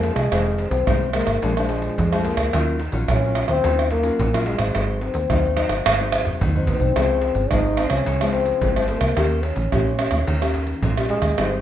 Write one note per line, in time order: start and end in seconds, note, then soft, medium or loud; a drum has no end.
0.00 0.12 F2 loud
0.00 0.29 F2 medium
0.00 0.28 F3 medium
0.00 0.28 G#3 medium
0.00 0.14 A#3 medium
0.00 0.28 C#4 medium
0.00 pandeiro medium
0.00 surdo soft
0.15 0.29 C2 medium
0.15 0.68 G#3 loud
0.15 pandeiro medium
0.15 tamborim medium
0.15 shaker medium
0.15 surdo soft
0.31 0.67 F1 medium
0.31 0.84 F2 medium
0.31 0.83 D#3 medium
0.31 0.83 G#3 soft
0.31 0.83 C4 medium
0.31 pandeiro medium
0.31 tamborim medium
0.31 shaker medium
0.31 surdo medium
0.47 pandeiro soft
0.47 shaker soft
0.58 pandeiro medium
0.58 shaker medium
0.70 0.84 C2 loud
0.70 1.11 C4 medium
0.70 pandeiro medium
0.70 shaker medium
0.70 surdo soft
0.87 1.23 C2 medium
0.87 1.40 C3 medium
0.87 1.04 D#3 medium
0.87 1.04 G#3 medium
0.87 1.04 C4 medium
0.87 pandeiro medium
0.87 tamborim medium
0.87 shaker medium
0.87 surdo loud
1.02 pandeiro soft
1.02 shaker soft
1.13 1.40 D#3 medium
1.13 1.40 G#3 medium
1.13 1.66 A#3 medium
1.13 1.40 C4 medium
1.13 pandeiro medium
1.13 tamborim medium
1.13 shaker medium
1.27 1.40 G#1 medium
1.27 pandeiro medium
1.27 tamborim medium
1.27 shaker medium
1.27 surdo soft
1.42 1.90 A#1 medium
1.42 1.95 A#2 medium
1.42 1.52 F3 soft
1.42 1.52 G#3 medium
1.42 1.52 D4 medium
1.42 pandeiro medium
1.42 shaker medium
1.42 surdo medium
1.57 2.08 F3 medium
1.57 2.08 G#3 medium
1.57 2.09 D4 medium
1.57 pandeiro soft
1.57 tamborim medium
1.57 shaker soft
1.68 2.26 G#3 medium
1.68 pandeiro medium
1.68 shaker medium
1.68 surdo soft
1.82 pandeiro medium
1.82 shaker medium
1.98 2.51 F2 medium
1.98 2.34 F2 medium
1.98 pandeiro medium
1.98 shaker medium
1.98 surdo medium
2.12 2.49 F3 medium
2.12 2.50 G#3 medium
2.12 2.50 D4 medium
2.12 pandeiro soft
2.12 tamborim medium
2.12 shaker soft
2.24 2.81 A#3 medium
2.24 pandeiro medium
2.24 shaker medium
2.24 surdo soft
2.37 2.50 D2 medium
2.37 pandeiro medium
2.37 tamborim medium
2.37 shaker medium
2.37 surdo soft
2.53 2.89 D#2 medium
2.53 3.06 D#3 medium
2.53 2.80 F#3 medium
2.53 2.80 C#4 medium
2.53 2.80 F4 medium
2.53 pandeiro medium
2.53 tamborim medium
2.53 shaker medium
2.53 surdo medium
2.68 pandeiro soft
2.68 shaker soft
2.80 pandeiro medium
2.80 shaker medium
2.92 3.06 A#1 medium
2.92 3.17 F#3 medium
2.92 3.18 C#4 medium
2.92 3.18 F4 medium
2.92 pandeiro medium
2.92 shaker medium
2.92 surdo soft
3.08 3.44 A#1 medium
3.08 3.62 A#2 medium
3.08 3.48 C#4 medium
3.08 pandeiro medium
3.08 tamborim medium
3.08 shaker medium
3.08 surdo loud
3.23 3.60 F#3 medium
3.23 3.60 C#4 medium
3.23 3.61 F4 medium
3.23 pandeiro soft
3.23 shaker soft
3.35 pandeiro medium
3.35 tamborim medium
3.35 shaker medium
3.48 3.61 D#2 medium
3.48 3.88 C4 loud
3.48 pandeiro medium
3.48 tamborim medium
3.48 shaker medium
3.48 surdo soft
3.64 4.11 D#2 loud
3.64 4.17 D#3 medium
3.64 4.01 F#3 medium
3.64 4.02 C#4 medium
3.64 4.02 F4 medium
3.64 pandeiro medium
3.64 shaker medium
3.64 surdo medium
3.79 pandeiro soft
3.79 tamborim medium
3.79 shaker soft
3.91 4.43 A#3 medium
3.91 pandeiro medium
3.91 shaker medium
3.91 surdo soft
4.03 4.28 F#3 medium
4.03 4.28 C#4 medium
4.03 4.28 F4 medium
4.03 pandeiro medium
4.03 shaker medium
4.19 4.55 A#1 medium
4.19 4.72 A#2 medium
4.19 pandeiro medium
4.19 shaker medium
4.19 surdo medium
4.34 4.57 F#3 medium
4.34 4.57 C#4 medium
4.34 4.57 F4 medium
4.34 pandeiro soft
4.34 tamborim medium
4.34 shaker soft
4.46 5.03 G#3 medium
4.46 pandeiro medium
4.46 shaker medium
4.46 surdo soft
4.58 4.72 A1 medium
4.58 5.11 F#3 medium
4.58 5.11 C4 medium
4.58 5.11 D#4 medium
4.58 pandeiro medium
4.58 tamborim medium
4.58 shaker medium
4.58 surdo soft
4.75 5.10 G#1 medium
4.75 5.27 G#2 soft
4.75 pandeiro medium
4.75 tamborim medium
4.75 shaker medium
4.75 surdo medium
4.89 pandeiro soft
4.89 shaker soft
5.01 6.13 C4 medium
5.01 pandeiro medium
5.14 5.27 D#2 loud
5.14 pandeiro medium
5.14 shaker medium
5.14 surdo soft
5.30 5.66 D#2 medium
5.30 5.83 D#3 medium
5.30 5.47 F#3 medium
5.30 5.47 C4 medium
5.30 5.47 D#4 medium
5.30 pandeiro medium
5.30 tamborim medium
5.30 shaker medium
5.30 surdo loud
5.45 pandeiro soft
5.45 shaker soft
5.57 5.83 F#3 medium
5.57 5.83 C4 medium
5.57 5.84 D#4 medium
5.57 pandeiro medium
5.57 tamborim medium
5.69 5.82 G#1 medium
5.69 pandeiro medium
5.69 tamborim medium
5.69 shaker medium
5.69 surdo soft
5.85 6.33 G#1 medium
5.85 6.38 G#2 medium
5.85 pandeiro medium
5.85 tamborim medium
5.85 shaker medium
5.85 surdo medium
6.00 6.51 F#3 medium
6.00 6.51 C4 medium
6.00 6.51 D#4 medium
6.00 pandeiro soft
6.00 shaker soft
6.12 pandeiro medium
6.12 tamborim medium
6.12 shaker medium
6.12 surdo soft
6.25 surdo medium
6.25 pandeiro medium
6.25 shaker medium
6.41 6.76 D#2 loud
6.41 6.93 D#3 medium
6.41 surdo medium
6.41 pandeiro medium
6.41 shaker medium
6.41 surdo loud
6.56 6.92 F#3 medium
6.56 6.92 C4 medium
6.56 6.92 D#4 medium
6.56 surdo medium
6.56 pandeiro soft
6.56 shaker soft
6.67 7.52 C4 medium
6.67 pandeiro medium
6.67 shaker medium
6.67 surdo loud
6.80 6.93 C2 medium
6.80 pandeiro medium
6.80 shaker medium
6.80 surdo loud
6.96 7.32 C#2 medium
6.96 7.49 C#3 medium
6.96 7.47 F3 medium
6.96 7.47 G#3 medium
6.96 7.47 C4 medium
6.96 pandeiro medium
6.96 tamborim medium
6.96 shaker medium
6.96 surdo medium
7.10 pandeiro soft
7.10 shaker soft
7.22 pandeiro medium
7.35 7.48 G#1 loud
7.35 pandeiro medium
7.35 shaker medium
7.35 surdo soft
7.51 7.87 G#1 medium
7.51 8.04 G#2 medium
7.51 7.68 F3 medium
7.51 7.68 G#3 medium
7.51 7.68 C4 medium
7.51 7.92 D#4 medium
7.51 pandeiro medium
7.51 tamborim medium
7.51 shaker medium
7.51 surdo medium
7.65 pandeiro soft
7.65 shaker soft
7.77 8.05 F3 soft
7.77 8.05 G#3 soft
7.77 8.05 C4 medium
7.77 pandeiro medium
7.77 tamborim medium
7.77 shaker medium
7.90 8.03 C#2 medium
7.90 8.32 C#4 loud
7.90 pandeiro medium
7.90 tamborim medium
7.90 shaker medium
7.90 surdo soft
8.06 8.54 C#2 loud
8.06 8.59 C#3 medium
8.06 pandeiro medium
8.06 shaker medium
8.06 surdo medium
8.21 8.72 F3 medium
8.21 8.72 G#3 medium
8.21 8.72 C4 medium
8.21 pandeiro soft
8.21 tamborim medium
8.21 shaker soft
8.33 8.85 C4 medium
8.33 pandeiro medium
8.33 shaker medium
8.33 surdo soft
8.45 pandeiro medium
8.45 shaker medium
8.61 8.97 G#1 medium
8.61 9.14 G#2 medium
8.61 pandeiro medium
8.61 shaker medium
8.61 surdo loud
8.76 9.13 F3 medium
8.76 9.13 G#3 medium
8.76 9.14 C4 medium
8.76 pandeiro soft
8.76 tamborim medium
8.76 shaker soft
8.88 9.45 A#3 medium
8.88 pandeiro medium
8.88 shaker medium
8.88 surdo soft
9.01 9.14 C#2 medium
9.01 pandeiro medium
9.01 tamborim medium
9.01 shaker medium
9.01 surdo soft
9.17 9.52 D#2 medium
9.17 9.70 D#3 medium
9.17 9.53 A#3 soft
9.17 9.53 C#4 soft
9.17 9.53 G4 medium
9.17 pandeiro medium
9.17 tamborim medium
9.17 shaker medium
9.17 surdo medium
9.32 pandeiro soft
9.32 shaker soft
9.43 10.55 C#4 medium
9.43 pandeiro medium
9.43 shaker medium
9.56 9.69 A#1 medium
9.56 pandeiro medium
9.56 shaker medium
9.56 surdo soft
9.72 10.08 A#1 medium
9.72 10.25 A#2 medium
9.72 9.89 A#3 medium
9.72 9.89 C#4 medium
9.72 9.89 G4 medium
9.72 pandeiro medium
9.72 tamborim medium
9.72 shaker medium
9.72 surdo medium
9.87 pandeiro soft
9.87 shaker soft
9.99 10.25 A#3 medium
9.99 10.26 C#4 medium
9.99 10.26 G4 medium
9.99 pandeiro medium
9.99 tamborim medium
9.99 shaker medium
10.11 10.24 D#2 medium
10.11 pandeiro medium
10.11 tamborim medium
10.11 shaker medium
10.11 surdo soft
10.27 10.75 D#2 medium
10.27 10.80 D#3 medium
10.27 pandeiro medium
10.27 shaker medium
10.27 surdo medium
10.41 10.93 A#3 medium
10.41 10.93 C#4 medium
10.41 10.93 G4 medium
10.41 pandeiro soft
10.41 tamborim medium
10.41 shaker soft
10.54 pandeiro medium
10.54 shaker medium
10.54 surdo soft
10.66 pandeiro medium
10.66 shaker medium
10.82 11.18 A#1 medium
10.82 11.36 A#2 medium
10.82 pandeiro medium
10.82 shaker medium
10.82 surdo loud
10.97 11.34 A#3 medium
10.97 11.34 C#4 medium
10.97 11.35 G4 medium
10.97 pandeiro soft
10.97 tamborim medium
10.97 shaker soft
11.09 11.61 G#3 loud
11.09 pandeiro medium
11.09 shaker medium
11.09 surdo soft
11.22 11.35 D#2 medium
11.22 pandeiro medium
11.22 tamborim medium
11.22 shaker medium
11.22 surdo soft
11.38 11.61 G#1 medium
11.38 11.61 G#2 medium
11.38 11.61 G3 medium
11.38 11.61 C4 medium
11.38 11.61 D#4 medium
11.38 pandeiro medium
11.38 tamborim medium
11.38 shaker medium
11.38 surdo medium
11.53 pandeiro soft
11.53 shaker soft